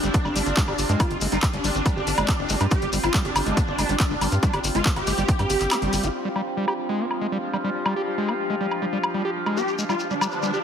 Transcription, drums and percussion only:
0.03 closed hi-hat, shekere
0.14 kick, closed hi-hat, shekere
0.25 high woodblock, shekere
0.36 open hi-hat, shekere
0.46 closed hi-hat, shekere
0.57 kick, clap, closed hi-hat, shekere
0.68 high woodblock, shekere
0.78 open hi-hat, shekere
0.89 closed hi-hat, shekere
1.00 kick, closed hi-hat, high woodblock, shekere
1.10 closed hi-hat, shekere
1.21 open hi-hat, shekere
1.32 closed hi-hat, shekere
1.43 kick, clap, closed hi-hat, high woodblock, shekere
1.53 closed hi-hat, shekere
1.64 open hi-hat, shekere
1.75 closed hi-hat, shekere
1.86 kick, closed hi-hat, high woodblock, shekere
1.97 shekere
2.07 open hi-hat, shekere
2.18 closed hi-hat, high woodblock, shekere
2.28 kick, clap, closed hi-hat, shekere
2.39 shekere
2.49 open hi-hat, shekere
2.60 closed hi-hat, high woodblock, shekere
2.71 kick, closed hi-hat, shekere
2.82 closed hi-hat, shekere
2.93 open hi-hat, shekere
3.03 closed hi-hat, high woodblock, shekere
3.14 kick, clap, closed hi-hat, shekere
3.25 closed hi-hat, shekere
3.36 open hi-hat, high woodblock, shekere
3.46 closed hi-hat, shekere
3.57 kick, closed hi-hat, shekere
3.68 shekere
3.78 open hi-hat, high woodblock, shekere
3.89 closed hi-hat, shekere
4.00 kick, clap, closed hi-hat, shekere
4.11 shekere
4.21 open hi-hat, high woodblock, shekere
4.32 closed hi-hat, shekere
4.43 kick, closed hi-hat, shekere
4.53 closed hi-hat, high woodblock, shekere
4.64 open hi-hat, shekere
4.75 closed hi-hat, shekere
4.85 kick, clap, closed hi-hat, shekere
4.96 closed hi-hat, high woodblock, shekere
5.07 open hi-hat, shekere
5.18 closed hi-hat, shekere
5.28 kick, closed hi-hat, shekere
5.39 closed hi-hat, high woodblock, shekere
5.50 open hi-hat, shekere
5.61 clap, closed hi-hat, shekere
5.71 clap, closed hi-hat, high woodblock, shekere
5.82 closed hi-hat, shekere
5.93 open hi-hat, shekere
6.04 closed hi-hat, shekere
6.36 high woodblock
6.68 high woodblock
7.11 high woodblock
7.53 high woodblock
7.86 high woodblock
8.28 high woodblock
8.71 high woodblock
9.03 high woodblock
9.46 high woodblock
9.57 shekere
9.68 shekere
9.79 shekere
9.89 high woodblock, shekere
9.99 shekere
10.10 shekere
10.21 high woodblock, shekere
10.32 shekere
10.43 shekere
10.53 shekere

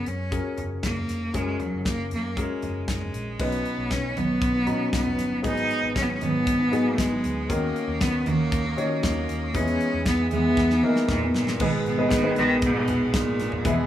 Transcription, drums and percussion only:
0.06 closed hi-hat
0.32 kick, closed hi-hat
0.58 closed hi-hat, floor tom
0.83 kick, snare, closed hi-hat
0.97 floor tom
1.09 snare, closed hi-hat
1.34 kick, closed hi-hat
1.60 closed hi-hat, floor tom
1.85 kick, snare, closed hi-hat
2.11 closed hi-hat
2.37 kick, closed hi-hat
2.62 closed hi-hat, floor tom
2.88 kick, snare, closed hi-hat
3.01 floor tom
3.14 closed hi-hat
3.40 kick, crash
3.52 closed hi-hat
3.66 closed hi-hat
3.91 kick, snare, closed hi-hat
4.17 closed hi-hat, floor tom
4.42 kick, closed hi-hat
4.67 closed hi-hat
4.93 kick, snare, closed hi-hat
5.06 floor tom
5.18 snare, closed hi-hat
5.44 kick, closed hi-hat
5.57 closed hi-hat
5.71 closed hi-hat
5.96 kick, snare, closed hi-hat
6.21 closed hi-hat, floor tom
6.47 kick, closed hi-hat
6.73 closed hi-hat
6.98 kick, snare, closed hi-hat
7.24 closed hi-hat
7.50 kick, closed hi-hat
7.76 closed hi-hat
8.01 kick, snare, closed hi-hat
8.26 closed hi-hat, floor tom
8.52 kick, closed hi-hat
8.78 closed hi-hat
9.03 kick, snare, closed hi-hat
9.29 closed hi-hat
9.54 kick, closed hi-hat
9.67 closed hi-hat
9.81 closed hi-hat
10.06 kick, snare, closed hi-hat
10.31 closed hi-hat, floor tom
10.57 kick, snare
10.70 snare
10.96 snare
11.09 kick, snare
11.35 snare
11.47 snare
11.60 kick, crash
11.86 closed hi-hat
12.11 kick, snare, closed hi-hat
12.36 closed hi-hat
12.62 kick, closed hi-hat
12.88 closed hi-hat, floor tom
13.14 kick, snare, closed hi-hat
13.39 snare, closed hi-hat
13.52 floor tom
13.65 kick, closed hi-hat

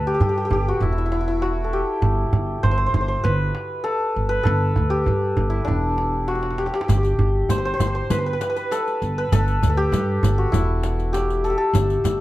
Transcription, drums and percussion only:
0.21 tombak dum
0.51 tombak dum
0.81 tombak dum
1.12 tombak tek
1.26 tombak ka
1.42 tombak tek
1.57 tombak ka
1.73 tombak ka
2.02 tombak dum
2.18 tombak ka
2.33 tombak dum
2.64 tombak dum
2.94 tombak dum
3.25 tombak dum
3.55 tombak tek
3.85 tombak tek
4.00 tombak ka
4.15 tombak ka
4.45 tombak dum
4.61 tombak ka
4.76 tombak dum
5.06 tombak dum
5.21 tombak ka
5.37 tombak dum
5.68 tombak dum
5.98 tombak tek
6.13 tombak ka
6.28 tombak tek
6.35 tombak ka
6.43 tombak tek
6.51 tombak ka
6.58 tombak tek
6.66 tombak ka
6.74 tombak tek
6.81 tombak ka
6.89 riq, tombak dum
7.04 riq, tombak ka
7.19 tombak dum
7.49 riq, tombak dum
7.80 riq, tombak dum
8.10 riq, tombak dum
8.41 riq, tombak tek
8.57 riq, tombak ka
8.71 riq, tombak tek
8.87 riq, tombak ka
9.02 riq, tombak ka
9.32 riq, tombak dum
9.48 riq, tombak ka
9.63 riq, tombak dum
9.93 riq, tombak dum
10.23 riq, tombak dum
10.53 riq, tombak dum
10.83 riq, tombak tek
10.99 riq, tombak ka
11.14 riq, tombak tek
11.30 riq, tombak ka
11.45 riq, tombak ka
11.74 riq, tombak dum
11.90 riq, tombak ka
12.05 riq, tombak dum

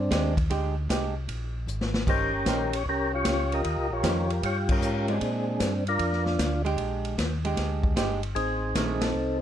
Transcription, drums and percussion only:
0.11 kick, snare, hi-hat pedal, ride
0.37 kick, ride
0.50 kick, ride
0.90 kick, snare, hi-hat pedal, ride
1.29 kick, ride
1.68 hi-hat pedal
1.81 snare
1.94 snare
2.07 kick, crash
2.46 kick, snare, hi-hat pedal, ride
2.73 ride
2.86 kick
3.25 kick, snare, hi-hat pedal, ride
3.52 ride
3.64 kick, ride
4.03 kick, snare, hi-hat pedal, ride
4.30 ride
4.43 kick, ride
4.69 kick, crash
4.82 hi-hat pedal
5.08 ride
5.21 kick, ride
5.60 kick, snare, hi-hat pedal, ride
5.87 ride
5.99 kick, ride
6.12 snare
6.26 snare
6.39 kick, snare, hi-hat pedal, ride
6.66 ride
6.78 kick, ride
7.05 ride
7.18 kick, snare, hi-hat pedal, ride
7.45 ride
7.57 kick, snare, ride
7.83 kick
7.96 kick, snare, hi-hat pedal, ride
8.23 ride
8.36 kick, ride
8.75 kick, snare, hi-hat pedal, ride
9.01 snare, ride

